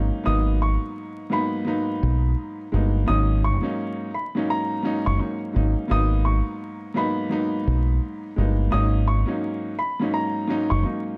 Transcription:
0.00 0.22 G#2 medium
0.00 0.23 F#3 medium
0.00 0.23 A#3 medium
0.00 0.24 C#4 medium
0.00 0.24 D#4 medium
0.24 0.76 G#1 loud
0.24 1.24 G#2 loud
0.24 1.24 F#3 medium
0.24 1.25 A#3 medium
0.24 1.25 B3 medium
0.24 1.25 D#4 loud
0.24 0.57 D#6 loud
0.62 1.28 C#6 medium
1.30 1.63 G#2 loud
1.30 1.64 F#3 medium
1.30 1.64 A#3 medium
1.30 1.65 B3 loud
1.30 1.65 D#4 loud
1.30 2.56 B5 medium
1.65 2.65 G#2 medium
1.65 2.65 F#3 medium
1.65 2.66 A#3 medium
1.65 2.66 B3 medium
1.65 2.67 D#4 loud
2.03 2.33 B1 loud
2.72 3.04 G1 loud
2.72 3.06 F#3 medium
2.72 3.05 G#3 medium
2.72 3.06 A#3 medium
2.72 3.06 B3 medium
2.72 3.07 D#4 medium
3.07 3.58 G#1 loud
3.07 3.59 G#2 medium
3.07 3.59 F#3 medium
3.07 3.60 A#3 medium
3.07 3.60 C#4 medium
3.07 3.60 D#4 loud
3.07 3.40 D#6 loud
3.44 4.10 C#6 medium
3.61 4.09 G#2 medium
3.61 4.09 F#3 medium
3.61 4.10 A#3 medium
3.61 4.10 C#4 medium
3.61 4.10 D#4 loud
4.14 4.46 B5 medium
4.35 4.81 G#2 loud
4.35 4.81 F#3 medium
4.35 4.82 A#3 medium
4.35 4.82 C#4 loud
4.35 4.82 D#4 loud
4.50 5.03 A#5 medium
4.83 5.16 G#2 loud
4.83 5.17 F#3 medium
4.83 5.17 A#3 medium
4.83 5.18 C#4 loud
4.83 5.18 D#4 loud
5.06 5.19 F#1 loud
5.06 5.38 C#6 medium
5.18 5.52 G#2 medium
5.18 5.52 F#3 medium
5.18 5.53 A#3 medium
5.18 5.53 C#4 medium
5.18 5.53 D#4 medium
5.53 5.74 G#1 loud
5.53 5.87 G#2 medium
5.53 5.87 F#3 medium
5.53 5.88 A#3 medium
5.53 5.88 C#4 medium
5.53 5.89 D#4 loud
5.88 6.40 G#1 loud
5.88 6.88 G#2 medium
5.88 6.89 F#3 medium
5.88 6.89 A#3 medium
5.88 6.90 B3 medium
5.88 6.90 D#4 loud
5.88 6.23 D#6 loud
6.25 6.92 C#6 medium
6.94 7.28 G#2 medium
6.94 7.29 F#3 medium
6.94 7.29 A#3 medium
6.94 7.29 B3 loud
6.94 7.30 D#4 loud
6.94 8.20 B5 medium
7.29 8.30 G#2 loud
7.29 8.30 F#3 medium
7.29 8.30 A#3 medium
7.29 8.31 B3 medium
7.29 8.31 D#4 loud
7.67 7.98 B1 loud
8.36 8.69 G1 loud
8.36 8.70 F#3 medium
8.36 8.70 G#3 medium
8.36 8.71 A#3 medium
8.36 8.71 B3 medium
8.36 8.71 D#4 medium
8.71 9.23 G#1 loud
8.71 9.23 G#2 medium
8.71 9.24 F#3 medium
8.71 9.24 A#3 medium
8.71 9.24 C#4 medium
8.71 9.25 D#4 loud
8.71 9.04 D#6 medium
9.08 9.74 C#6 medium
9.26 9.73 G#2 medium
9.26 9.74 F#3 medium
9.26 9.74 A#3 medium
9.26 9.75 C#4 medium
9.26 9.75 D#4 loud
9.79 10.10 B5 medium
10.00 10.46 G#2 medium
10.00 10.46 F#3 medium
10.00 10.46 A#3 medium
10.00 10.47 C#4 medium
10.00 10.47 D#4 loud
10.14 10.67 A#5 medium
10.48 10.81 G#2 loud
10.48 10.82 F#3 medium
10.48 10.82 A#3 medium
10.48 10.83 C#4 medium
10.48 10.83 D#4 loud
10.70 10.83 F#1 loud
10.70 11.02 C#6 medium
10.83 11.17 G#2 medium
10.83 11.17 F#3 medium
10.83 11.17 A#3 medium
10.83 11.18 C#4 medium
10.83 11.18 D#4 medium

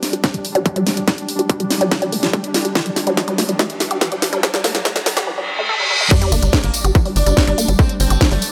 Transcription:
0.00 5.27 G3 medium
0.00 5.27 D4 medium
0.00 snare soft
0.00 open hi-hat loud
0.00 riser medium
0.13 0.16 G4 medium
0.13 closed hi-hat medium
0.24 0.28 F3 medium
0.24 kick loud
0.24 snare medium
0.24 closed hi-hat medium
0.34 0.41 G3 medium
0.34 closed hi-hat medium
0.45 open hi-hat loud
0.55 0.60 G3 loud
0.55 closed hi-hat medium
0.66 0.70 G3 medium
0.66 kick loud
0.66 closed hi-hat medium
0.76 0.81 G3 loud
0.76 closed hi-hat medium
0.87 0.94 A#3 medium
0.87 snare medium
0.87 open hi-hat loud
0.97 1.02 G3 medium
0.97 closed hi-hat medium
1.08 1.12 A3 medium
1.08 kick loud
1.08 snare medium
1.08 closed hi-hat medium
1.18 closed hi-hat medium
1.29 open hi-hat loud
1.39 1.42 G4 medium
1.39 closed hi-hat medium
1.50 1.54 F3 medium
1.50 kick loud
1.50 closed hi-hat medium
1.60 1.67 G3 medium
1.60 closed hi-hat medium
1.71 snare medium
1.71 open hi-hat loud
1.81 1.86 G3 loud
1.81 closed hi-hat medium
1.91 1.96 G3 medium
1.91 kick loud
1.91 snare medium
1.91 closed hi-hat medium
2.02 2.07 G3 loud
2.02 closed hi-hat medium
2.12 2.19 A#3 medium
2.12 open hi-hat loud
2.23 2.28 G3 medium
2.23 snare medium
2.23 closed hi-hat medium
2.33 2.38 A3 medium
2.33 kick loud
2.33 closed hi-hat medium
2.44 closed hi-hat medium
2.54 snare medium
2.54 open hi-hat loud
2.65 2.68 G4 medium
2.65 closed hi-hat medium
2.75 2.80 F3 medium
2.75 kick loud
2.75 snare medium
2.75 closed hi-hat medium
2.86 2.93 G3 medium
2.86 closed hi-hat medium
2.96 snare medium
2.96 open hi-hat loud
3.07 3.12 G3 loud
3.07 closed hi-hat medium
3.17 3.22 G3 medium
3.17 kick loud
3.17 snare medium
3.17 closed hi-hat medium
3.28 3.33 G3 loud
3.28 closed hi-hat medium
3.38 3.45 A#3 medium
3.38 snare medium
3.38 open hi-hat loud
3.49 3.53 G3 medium
3.49 closed hi-hat medium
3.59 3.64 A3 medium
3.59 kick loud
3.59 snare medium
3.59 closed hi-hat medium
3.70 closed hi-hat medium
3.80 snare medium
3.80 open hi-hat loud
3.91 3.94 G4 medium
3.91 closed hi-hat medium
4.01 4.06 F3 medium
4.01 kick loud
4.01 snare medium
4.01 closed hi-hat medium
4.12 4.19 G3 medium
4.12 closed hi-hat medium
4.22 snare medium
4.22 open hi-hat loud
4.33 4.37 G3 loud
4.33 closed hi-hat soft
4.43 4.48 G3 medium
4.43 kick loud
4.43 snare medium
4.43 closed hi-hat medium
4.54 4.58 G3 loud
4.54 snare medium
4.54 closed hi-hat medium
4.64 4.71 A#3 medium
4.64 snare loud
4.64 open hi-hat loud
4.75 4.79 G3 medium
4.75 snare medium
4.75 closed hi-hat medium
4.85 4.90 A3 medium
4.85 kick loud
4.85 snare loud
4.85 closed hi-hat medium
4.96 snare medium
4.96 closed hi-hat medium
5.06 snare loud
5.06 open hi-hat loud
5.17 5.19 G4 medium
5.17 snare medium
5.17 closed hi-hat medium
5.27 5.32 F3 medium
5.27 reverse cymbal medium
5.38 5.45 G3 medium
5.59 5.61 A3 medium
5.69 5.74 A4 loud
5.80 5.87 G3 medium
5.90 5.97 G3 medium
6.01 6.08 A3 medium
6.11 6.16 G3 medium
6.11 8.52 G3 medium
6.11 6.24 D4 loud
6.11 8.52 D4 medium
6.11 kick loud
6.11 closed hi-hat medium
6.11 crash loud
6.11 tambourine soft
6.11 sub drop medium
6.22 6.26 G3 loud
6.22 closed hi-hat medium
6.32 6.39 G1 loud
6.32 6.39 A#3 medium
6.32 6.52 D4 loud
6.32 open hi-hat loud
6.32 tambourine medium
6.42 6.49 G1 medium
6.42 6.47 G3 medium
6.42 closed hi-hat medium
6.42 tambourine medium
6.52 6.58 A3 medium
6.52 kick loud
6.52 snare loud
6.52 closed hi-hat medium
6.52 tambourine soft
6.64 6.70 G1 medium
6.64 6.77 A#3 medium
6.64 closed hi-hat medium
6.74 open hi-hat loud
6.74 tambourine medium
6.84 6.91 G1 medium
6.84 6.87 G4 medium
6.84 closed hi-hat medium
6.84 tambourine medium
6.95 7.00 F3 medium
6.95 kick loud
6.95 closed hi-hat medium
6.95 tambourine soft
7.05 7.12 G3 medium
7.05 open hi-hat medium
7.16 7.23 G1 medium
7.16 7.36 D4 medium
7.16 open hi-hat loud
7.16 tambourine medium
7.26 7.33 G1 medium
7.26 7.31 G3 loud
7.26 closed hi-hat medium
7.26 tambourine medium
7.37 7.42 G3 medium
7.37 kick loud
7.37 snare loud
7.37 closed hi-hat medium
7.37 tambourine soft
7.47 7.54 G1 medium
7.47 7.52 G3 loud
7.47 7.67 D4 medium
7.47 closed hi-hat medium
7.58 7.65 A#3 medium
7.58 open hi-hat loud
7.58 tambourine loud
7.68 7.75 G1 medium
7.68 7.73 G3 medium
7.68 closed hi-hat medium
7.68 tambourine medium
7.79 7.84 A3 medium
7.79 7.92 C4 loud
7.79 kick loud
7.79 closed hi-hat medium
7.79 tambourine soft
7.89 closed hi-hat medium
8.00 8.07 G1 loud
8.00 8.20 C4 medium
8.00 open hi-hat loud
8.00 tambourine medium
8.10 8.17 G1 medium
8.10 8.13 G4 medium
8.10 closed hi-hat medium
8.10 tambourine medium
8.21 8.26 F3 medium
8.21 kick loud
8.21 snare loud
8.21 closed hi-hat medium
8.21 tambourine soft
8.31 8.38 G1 medium
8.31 8.38 G3 medium
8.31 8.45 A3 medium
8.31 open hi-hat medium
8.42 open hi-hat loud
8.42 tambourine medium

